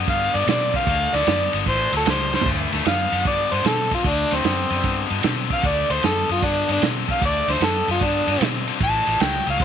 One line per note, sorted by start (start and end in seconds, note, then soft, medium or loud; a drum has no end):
0.08 0.28 G2 medium
0.08 0.32 D3 medium
0.08 0.32 B3 loud
0.08 0.38 F5 loud
0.08 kick loud
0.08 ride medium
0.34 0.44 G2 medium
0.34 0.46 D3 medium
0.34 0.46 B3 medium
0.34 0.48 D5 medium
0.34 ride medium
0.47 0.77 B2 medium
0.47 0.71 D3 medium
0.47 0.72 C4 medium
0.47 0.74 D5 medium
0.47 snare loud
0.47 ride medium
0.74 0.86 D3 medium
0.74 0.86 C4 loud
0.74 1.16 F5 loud
0.74 kick medium
0.74 ride medium
0.87 1.07 D2 loud
0.87 1.11 D3 medium
0.87 1.11 A3 medium
0.87 kick loud
0.87 ride medium
1.13 1.23 D2 medium
1.13 1.25 D3 medium
1.13 1.26 A3 medium
1.13 1.53 D5 loud
1.13 snare soft
1.13 ride medium
1.27 1.47 F#2 loud
1.27 1.51 D3 medium
1.27 1.51 B3 loud
1.27 snare loud
1.27 ride medium
1.53 1.63 G1 medium
1.53 1.65 D3 medium
1.53 1.65 B3 loud
1.53 ride medium
1.66 1.86 A1 medium
1.66 1.90 A2 medium
1.66 1.90 E3 loud
1.66 1.93 C5 loud
1.66 kick medium
1.66 ride medium
1.93 2.03 D2 medium
1.93 2.04 A2 medium
1.93 2.05 F#3 medium
1.93 2.07 A4 medium
1.93 ride medium
2.05 2.36 C#2 loud
2.05 2.30 A2 loud
2.05 2.30 G3 medium
2.05 snare loud
2.05 ride loud
2.10 2.34 C5 medium
2.33 2.44 A2 medium
2.33 2.45 G3 medium
2.33 2.47 C5 loud
2.33 snare medium
2.41 floor tom loud
2.46 2.66 D2 loud
2.46 2.70 D3 medium
2.46 2.70 A3 medium
2.46 kick loud
2.46 crash loud
2.72 2.82 D2 medium
2.72 2.84 D3 medium
2.72 2.84 A3 medium
2.72 snare soft
2.72 ride medium
2.85 3.06 F#2 medium
2.85 3.09 D3 medium
2.85 3.10 B3 medium
2.85 3.25 F5 loud
2.85 snare loud
2.85 ride medium
3.12 3.22 F#2 medium
3.12 3.24 D3 medium
3.12 3.24 B3 medium
3.12 ride medium
3.25 3.45 G2 medium
3.25 3.49 D3 medium
3.25 3.49 B3 medium
3.25 3.55 D5 medium
3.25 kick medium
3.25 ride medium
3.52 3.62 G2 medium
3.52 3.63 D3 medium
3.52 3.64 B3 medium
3.52 3.68 C5 medium
3.52 ride medium
3.65 3.94 B2 medium
3.65 3.89 D3 medium
3.65 3.89 C4 medium
3.65 3.92 A4 medium
3.65 snare loud
3.65 ride medium
3.91 4.03 D3 medium
3.91 4.04 C4 medium
3.91 4.09 F4 medium
3.91 kick medium
3.91 ride medium
4.04 4.24 D2 medium
4.04 4.29 D3 medium
4.04 4.29 A3 medium
4.04 4.36 D4 loud
4.04 kick loud
4.04 ride medium
4.31 4.41 D2 medium
4.31 4.43 D3 medium
4.31 4.43 A3 medium
4.31 5.10 C4 loud
4.31 snare soft
4.31 ride medium
4.44 4.64 F#2 medium
4.44 4.68 D3 medium
4.44 4.69 B3 medium
4.44 snare loud
4.44 ride medium
4.70 4.81 F#2 medium
4.70 4.82 D3 medium
4.70 4.83 B3 medium
4.70 ride medium
4.83 5.04 G2 medium
4.83 5.08 D3 medium
4.83 5.08 B3 medium
4.83 kick loud
4.83 ride medium
5.10 5.20 G2 medium
5.10 5.22 D3 medium
5.10 5.23 B3 medium
5.10 ride medium
5.23 5.54 B2 medium
5.23 5.47 D3 medium
5.23 5.48 C4 medium
5.23 snare loud
5.23 ride medium
5.50 5.62 D3 medium
5.50 5.62 C4 medium
5.50 5.68 F5 loud
5.50 kick medium
5.50 ride medium
5.63 5.83 D2 loud
5.63 5.87 D3 medium
5.63 5.87 A3 medium
5.63 5.94 D5 medium
5.63 kick loud
5.63 ride medium
5.90 6.00 D2 medium
5.90 6.02 D3 medium
5.90 6.02 A3 medium
5.90 6.07 C5 medium
5.90 ride medium
6.03 6.23 F#2 medium
6.03 6.27 D3 medium
6.03 6.27 B3 loud
6.03 6.30 A4 medium
6.03 snare loud
6.03 ride medium
6.29 6.39 F#2 medium
6.29 6.41 D3 medium
6.29 6.41 B3 medium
6.29 6.46 F4 medium
6.29 ride medium
6.42 6.62 G2 medium
6.42 6.66 D3 medium
6.42 6.67 B3 medium
6.42 6.69 D4 medium
6.42 kick medium
6.42 ride medium
6.69 6.79 G2 medium
6.69 6.81 D3 medium
6.69 6.81 B3 medium
6.69 6.83 D4 loud
6.69 ride medium
6.82 7.12 B2 medium
6.82 7.06 D3 medium
6.82 7.06 C4 loud
6.82 snare loud
6.82 ride medium
7.08 7.20 D3 medium
7.08 7.20 C4 medium
7.08 7.23 F5 loud
7.08 kick medium
7.08 ride medium
7.21 7.42 D2 loud
7.21 7.45 D3 medium
7.21 7.46 A3 medium
7.21 7.53 D5 loud
7.21 kick loud
7.21 ride medium
7.48 7.58 D2 medium
7.48 7.60 D3 medium
7.48 7.60 A3 medium
7.48 snare soft
7.48 ride medium
7.52 7.66 C5 medium
7.60 7.81 F#2 medium
7.60 7.85 D3 medium
7.60 7.85 B3 medium
7.60 snare loud
7.60 ride medium
7.65 7.89 A4 loud
7.87 7.98 F#2 medium
7.87 7.99 D3 medium
7.87 8.00 B3 medium
7.87 8.05 F4 loud
7.87 ride medium
8.00 8.21 G2 medium
8.00 8.25 D3 medium
8.00 8.25 B3 medium
8.00 8.28 D4 loud
8.00 kick medium
8.00 ride medium
8.27 8.37 G2 loud
8.27 8.39 D3 medium
8.27 8.39 B3 medium
8.27 8.42 D4 medium
8.27 ride medium
8.40 8.70 B2 medium
8.40 8.64 D3 medium
8.40 8.65 C4 medium
8.40 snare loud
8.40 ride loud
8.67 8.79 D3 medium
8.67 8.79 C4 medium
8.67 ride medium
8.80 9.00 A1 loud
8.80 9.04 A2 medium
8.80 9.04 E3 medium
8.80 9.24 A5 loud
8.80 kick loud
8.80 ride medium
9.06 9.17 A1 medium
9.06 9.18 A2 medium
9.06 9.19 E3 medium
9.06 ride medium
9.19 9.40 C#2 medium
9.19 9.44 A2 medium
9.19 9.44 F#3 loud
9.19 9.47 G5 loud
9.19 snare loud
9.19 ride medium
9.47 9.57 C#2 medium
9.47 9.58 A2 medium
9.47 9.59 F#3 medium
9.47 9.65 F5 loud
9.47 ride medium
9.59 9.65 D2 medium
9.59 9.65 A2 medium
9.59 9.65 F#3 medium
9.59 kick loud
9.59 ride medium